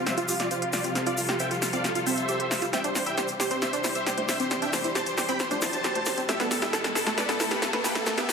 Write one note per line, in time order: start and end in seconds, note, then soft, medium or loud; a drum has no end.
0.00 6.25 C3 medium
0.00 2.70 F3 medium
0.00 6.25 G3 medium
0.00 2.70 F4 medium
0.00 0.91 G4 medium
0.06 0.16 C5 medium
0.06 0.16 E5 medium
0.06 snare medium
0.06 closed hi-hat medium
0.06 shaker medium
0.17 0.27 F4 medium
0.17 0.28 F4 loud
0.17 closed hi-hat medium
0.17 shaker soft
0.28 0.38 F4 medium
0.28 0.39 G4 medium
0.28 open hi-hat loud
0.28 shaker loud
0.40 0.49 F4 medium
0.40 0.49 D5 medium
0.40 snare medium
0.40 closed hi-hat medium
0.40 shaker soft
0.51 0.60 F4 medium
0.51 0.58 C5 medium
0.51 closed hi-hat medium
0.51 shaker medium
0.62 0.71 F4 medium
0.62 0.69 F5 medium
0.62 closed hi-hat medium
0.73 0.83 F4 medium
0.73 0.83 D5 medium
0.73 snare medium
0.73 open hi-hat medium
0.73 shaker medium
0.84 0.94 C4 medium
0.84 0.94 F4 medium
0.84 closed hi-hat medium
0.84 shaker soft
0.95 1.02 C4 medium
0.95 1.05 F4 medium
0.95 2.71 A4 medium
0.95 snare medium
0.95 closed hi-hat medium
0.95 shaker soft
1.06 1.17 F4 loud
1.06 1.16 D5 medium
1.06 1.16 F5 medium
1.06 closed hi-hat medium
1.06 shaker soft
1.17 1.27 F4 medium
1.17 open hi-hat loud
1.17 shaker medium
1.29 1.38 F4 medium
1.29 1.35 G4 medium
1.29 snare medium
1.29 closed hi-hat medium
1.29 shaker soft
1.39 1.47 C5 medium
1.39 1.49 E5 medium
1.39 1.49 G5 medium
1.39 closed hi-hat medium
1.39 shaker medium
1.51 1.60 F4 medium
1.51 closed hi-hat medium
1.51 shaker soft
1.62 1.71 F4 medium
1.62 1.69 F5 loud
1.62 snare medium
1.62 open hi-hat medium
1.62 shaker loud
1.73 1.77 C4 loud
1.73 1.83 D5 medium
1.73 1.83 F5 medium
1.73 closed hi-hat medium
1.73 shaker soft
1.84 1.94 F4 medium
1.84 snare medium
1.84 closed hi-hat medium
1.84 shaker medium
1.95 2.05 F4 medium
1.95 2.05 F4 loud
1.95 closed hi-hat medium
1.95 shaker soft
2.07 2.17 C4 loud
2.07 2.64 C5 medium
2.07 2.64 E5 loud
2.07 open hi-hat loud
2.07 shaker medium
2.18 closed hi-hat medium
2.18 shaker soft
2.28 2.35 G4 loud
2.28 closed hi-hat medium
2.28 shaker medium
2.40 2.50 G4 medium
2.40 closed hi-hat medium
2.51 snare medium
2.51 open hi-hat medium
2.51 shaker loud
2.62 2.69 F4 loud
2.62 closed hi-hat medium
2.62 shaker soft
2.73 8.33 E3 medium
2.73 2.80 C4 medium
2.73 6.25 D4 medium
2.73 6.25 G4 medium
2.73 2.83 E5 medium
2.73 2.83 G5 loud
2.73 snare medium
2.73 closed hi-hat medium
2.73 riser medium
2.73 shaker medium
2.84 2.94 D4 loud
2.84 2.94 C5 medium
2.84 closed hi-hat medium
2.84 shaker soft
2.95 3.05 C5 medium
2.95 snare medium
2.95 open hi-hat loud
2.95 shaker medium
3.06 3.13 E4 medium
3.06 3.16 E5 medium
3.06 3.16 G5 medium
3.06 closed hi-hat medium
3.06 shaker soft
3.18 3.24 G4 medium
3.18 3.27 C5 medium
3.18 snare medium
3.18 closed hi-hat medium
3.18 shaker soft
3.28 closed hi-hat medium
3.28 shaker soft
3.40 3.50 G4 loud
3.40 3.49 C5 medium
3.40 snare medium
3.40 open hi-hat medium
3.40 shaker medium
3.50 3.55 C4 loud
3.50 3.60 C5 medium
3.50 closed hi-hat medium
3.50 shaker soft
3.62 3.71 C5 medium
3.62 3.71 E5 medium
3.62 snare medium
3.62 closed hi-hat medium
3.62 shaker medium
3.73 3.83 D4 loud
3.73 3.82 C5 medium
3.73 closed hi-hat medium
3.73 shaker soft
3.84 3.94 E4 medium
3.84 3.94 C5 medium
3.84 snare medium
3.84 open hi-hat loud
3.84 shaker medium
3.95 4.05 C5 medium
3.95 4.05 E5 medium
3.95 closed hi-hat medium
3.95 shaker soft
4.06 4.13 G4 medium
4.06 4.16 C5 medium
4.06 snare medium
4.06 closed hi-hat medium
4.06 shaker medium
4.18 4.27 C5 medium
4.18 4.24 C5 medium
4.18 closed hi-hat medium
4.18 high conga medium
4.29 4.38 C5 medium
4.29 4.38 E5 medium
4.29 snare medium
4.29 open hi-hat medium
4.29 shaker loud
4.40 4.50 C4 medium
4.40 4.49 C5 medium
4.40 closed hi-hat medium
4.40 shaker soft
4.51 4.58 C4 medium
4.51 4.60 C5 medium
4.51 snare medium
4.51 closed hi-hat medium
4.51 shaker soft
4.62 4.72 D4 loud
4.62 4.71 E5 medium
4.62 4.71 G5 medium
4.62 closed hi-hat medium
4.62 shaker soft
4.73 4.82 C5 medium
4.73 snare medium
4.73 open hi-hat loud
4.73 high conga medium
4.73 shaker medium
4.84 4.91 E4 medium
4.84 4.94 C5 medium
4.84 closed hi-hat medium
4.84 shaker soft
4.95 5.02 G4 medium
4.95 5.05 C5 medium
4.95 5.05 A5 medium
4.95 snare medium
4.95 closed hi-hat medium
4.95 shaker medium
5.06 5.16 C5 medium
5.06 closed hi-hat medium
5.06 shaker soft
5.18 5.28 G4 loud
5.18 5.27 C5 medium
5.18 snare medium
5.18 open hi-hat medium
5.18 shaker medium
5.28 5.33 C4 loud
5.28 5.38 G5 medium
5.28 5.38 B5 medium
5.28 closed hi-hat medium
5.28 shaker soft
5.39 5.49 C5 medium
5.39 snare medium
5.39 closed hi-hat medium
5.39 shaker medium
5.51 5.61 D4 loud
5.51 5.60 C5 medium
5.51 closed hi-hat medium
5.51 high conga medium
5.51 shaker soft
5.61 5.72 E4 medium
5.61 6.20 C5 medium
5.61 6.20 A5 loud
5.61 snare medium
5.61 open hi-hat loud
5.61 shaker medium
5.73 closed hi-hat medium
5.73 shaker soft
5.84 5.91 G4 medium
5.84 snare medium
5.84 closed hi-hat medium
5.84 shaker soft
5.95 6.02 C5 medium
5.95 closed hi-hat medium
5.95 high conga medium
6.05 snare medium
6.05 open hi-hat medium
6.05 shaker medium
6.18 6.28 C4 medium
6.18 closed hi-hat medium
6.18 shaker soft
6.29 8.33 B2 medium
6.29 6.35 A3 medium
6.29 8.33 A3 medium
6.29 8.33 E4 medium
6.29 6.38 G4 medium
6.29 8.33 A4 medium
6.29 6.38 E5 loud
6.29 snare medium
6.29 closed hi-hat medium
6.29 shaker soft
6.40 6.50 B3 loud
6.40 6.49 A4 medium
6.40 snare medium
6.40 closed hi-hat medium
6.40 shaker soft
6.51 6.60 A4 medium
6.51 snare medium
6.51 open hi-hat loud
6.51 shaker medium
6.62 6.69 E4 medium
6.62 6.71 G4 medium
6.62 6.71 E5 medium
6.62 snare medium
6.62 closed hi-hat medium
6.62 shaker soft
6.73 6.80 A4 medium
6.73 6.83 A4 medium
6.73 snare medium
6.73 closed hi-hat medium
6.73 shaker medium
6.84 snare medium
6.84 closed hi-hat medium
6.84 shaker soft
6.95 7.05 A4 loud
6.95 7.05 A4 medium
6.95 snare medium
6.95 open hi-hat medium
6.95 shaker medium
7.07 7.11 A3 loud
7.07 7.16 A4 medium
7.07 snare medium
7.07 closed hi-hat medium
7.07 shaker soft
7.18 7.27 B4 medium
7.18 7.27 D5 medium
7.18 snare loud
7.18 closed hi-hat medium
7.18 shaker medium
7.29 7.39 B3 loud
7.29 7.38 A4 medium
7.29 snare medium
7.29 closed hi-hat medium
7.29 shaker soft
7.40 7.50 E4 medium
7.40 7.49 A4 medium
7.40 snare loud
7.40 open hi-hat loud
7.40 shaker medium
7.51 7.60 G4 medium
7.51 7.60 B4 medium
7.51 snare medium
7.51 closed hi-hat medium
7.51 shaker soft
7.62 7.69 A4 medium
7.62 7.71 A4 medium
7.62 snare loud
7.62 closed hi-hat medium
7.62 shaker soft
7.73 7.83 A4 medium
7.73 7.80 B4 medium
7.73 snare medium
7.73 closed hi-hat medium
7.73 high conga medium
7.84 7.94 G4 medium
7.84 7.94 B4 medium
7.84 snare loud
7.84 open hi-hat medium
7.84 shaker medium
7.95 8.05 A3 medium
7.95 8.05 A4 medium
7.95 snare medium
7.95 closed hi-hat medium
7.95 shaker soft
8.06 8.13 A3 medium
8.06 8.16 A4 medium
8.06 snare loud
8.06 closed hi-hat medium
8.06 shaker medium
8.18 8.28 B3 loud
8.18 8.27 G4 medium
8.18 8.27 E5 loud
8.18 snare medium
8.18 closed hi-hat medium
8.18 shaker soft
8.29 8.33 A4 medium
8.29 snare loud
8.29 open hi-hat loud
8.29 high conga medium
8.29 shaker medium